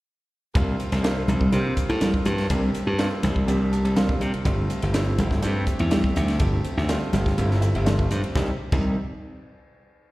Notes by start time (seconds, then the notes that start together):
0.54 C2 G3 A#3 C4 D4 F4, kick, hi-hat pedal, ride, muted conga
0.80 hi-hat pedal, ride, muted conga
0.92 C2, snare, ride
1.03 G3 A#3 C4 D4 F4, snare, hi-hat pedal, ride
1.28 C2, hi-hat pedal, ride, high conga
1.41 kick
1.52 C3 G3 A#3 C4 D4 F4, hi-hat pedal, ride
1.77 kick, hi-hat pedal, ride
1.89 A2, ride
2.01 G3 A#3 C4 D4 F4, snare, hi-hat pedal, ride, muted conga, high conga
2.14 kick
2.25 G2, hi-hat pedal, ride, high conga
2.38 snare, ride
2.50 C2 G3 A#3 C4 D4 G4, kick, hi-hat pedal, ride, muted conga
2.74 hi-hat pedal, ride, muted conga
2.87 G2
2.98 G3 A#3 C4 D4 F4, snare, hi-hat pedal, ride
3.23 C2, snare, hi-hat pedal, ride, high conga
3.36 kick
3.47 C2 G3 A#3 C4 D4 G4, hi-hat pedal, ride, muted conga
3.72 A5, hi-hat pedal, ride
3.85 C2, ride
3.95 G3 A#3 C4 D4 F4 F5, snare, hi-hat pedal, ride, muted conga, high conga
4.09 kick
4.20 C3 D5, hi-hat pedal, ride
4.34 muted slap bass stroke, ride
4.44 G1 G3 A3 C4 D4 F4, kick, hi-hat pedal, ride, muted conga
4.70 hi-hat pedal, ride, muted conga
4.82 G1, ride
4.93 G3 A3 C4 D4 E4, snare, hi-hat pedal, ride
5.18 G1, hi-hat pedal, ride, high conga
5.31 kick, snare
5.41 G2 G3 A3 C4 D4 G4, hi-hat pedal, ride, muted conga
5.67 kick, hi-hat pedal, ride
5.79 E2, ride
5.90 G3 A3 C4 D4 G4, snare, hi-hat pedal, ride, muted conga, high conga
6.04 kick
6.16 D2, hi-hat pedal, ride, high conga
6.28 snare, ride
6.39 G1 G3 A3 C4 D4 G4, kick, hi-hat pedal, ride
6.64 hi-hat pedal, ride, muted conga
6.77 D2, snare
6.88 G3 A3 C4 D4 F4, snare, hi-hat pedal, ride
7.13 G1 G5, snare, hi-hat pedal, ride, high conga
7.26 kick, snare
7.38 G1 G3 A3 C4 D4 E4 F5, hi-hat pedal, ride, muted conga
7.51 snare
7.61 E5, hi-hat pedal, ride
7.75 G1, ride
7.85 G3 A3 C4 D4 F4 D5, snare, hi-hat pedal, ride, muted conga, high conga
7.99 kick
8.11 G2 C5, hi-hat pedal, ride
8.23 muted slap bass stroke, ride
8.35 C2 D#3 G3 C4 D#4 G4, kick, snare, muted conga
8.72 C2 D#3 G3 C4 D#4 G4, kick, crash, muted conga